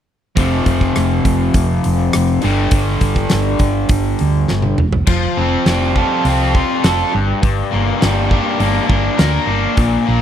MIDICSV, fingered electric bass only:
0, 0, Header, 1, 2, 480
1, 0, Start_track
1, 0, Key_signature, -2, "minor"
1, 0, Tempo, 587659
1, 304, Time_signature, 4, 2, 24, 8
1, 8345, End_track
2, 0, Start_track
2, 0, Title_t, "Fingered electric bass"
2, 0, Program_c, 0, 33
2, 308, Note_on_c, 0, 29, 69
2, 495, Note_off_c, 0, 29, 0
2, 543, Note_on_c, 0, 29, 57
2, 733, Note_off_c, 0, 29, 0
2, 792, Note_on_c, 0, 29, 67
2, 978, Note_off_c, 0, 29, 0
2, 1020, Note_on_c, 0, 29, 64
2, 1211, Note_off_c, 0, 29, 0
2, 1265, Note_on_c, 0, 29, 65
2, 1454, Note_off_c, 0, 29, 0
2, 1520, Note_on_c, 0, 29, 69
2, 1703, Note_off_c, 0, 29, 0
2, 1759, Note_on_c, 0, 29, 74
2, 1942, Note_off_c, 0, 29, 0
2, 1995, Note_on_c, 0, 31, 61
2, 2180, Note_off_c, 0, 31, 0
2, 2221, Note_on_c, 0, 31, 81
2, 2411, Note_off_c, 0, 31, 0
2, 2461, Note_on_c, 0, 31, 61
2, 2651, Note_off_c, 0, 31, 0
2, 2716, Note_on_c, 0, 31, 78
2, 2900, Note_off_c, 0, 31, 0
2, 2942, Note_on_c, 0, 31, 63
2, 3132, Note_off_c, 0, 31, 0
2, 3188, Note_on_c, 0, 31, 74
2, 3375, Note_off_c, 0, 31, 0
2, 3439, Note_on_c, 0, 38, 76
2, 3622, Note_off_c, 0, 38, 0
2, 3682, Note_on_c, 0, 31, 69
2, 3864, Note_off_c, 0, 31, 0
2, 3917, Note_on_c, 0, 28, 72
2, 4101, Note_off_c, 0, 28, 0
2, 4148, Note_on_c, 0, 29, 75
2, 4295, Note_off_c, 0, 29, 0
2, 4387, Note_on_c, 0, 29, 62
2, 4535, Note_off_c, 0, 29, 0
2, 4621, Note_on_c, 0, 29, 78
2, 4919, Note_off_c, 0, 29, 0
2, 5103, Note_on_c, 0, 36, 72
2, 5401, Note_off_c, 0, 36, 0
2, 5587, Note_on_c, 0, 29, 72
2, 5735, Note_off_c, 0, 29, 0
2, 5837, Note_on_c, 0, 31, 76
2, 5981, Note_off_c, 0, 31, 0
2, 6069, Note_on_c, 0, 31, 75
2, 6216, Note_off_c, 0, 31, 0
2, 6317, Note_on_c, 0, 31, 57
2, 6462, Note_off_c, 0, 31, 0
2, 6559, Note_on_c, 0, 31, 72
2, 6852, Note_off_c, 0, 31, 0
2, 7024, Note_on_c, 0, 31, 71
2, 7173, Note_off_c, 0, 31, 0
2, 7265, Note_on_c, 0, 31, 80
2, 7414, Note_off_c, 0, 31, 0
2, 7512, Note_on_c, 0, 38, 74
2, 7659, Note_off_c, 0, 38, 0
2, 7736, Note_on_c, 0, 31, 69
2, 7888, Note_off_c, 0, 31, 0
2, 7987, Note_on_c, 0, 34, 83
2, 8135, Note_off_c, 0, 34, 0
2, 8237, Note_on_c, 0, 34, 71
2, 8345, Note_off_c, 0, 34, 0
2, 8345, End_track
0, 0, End_of_file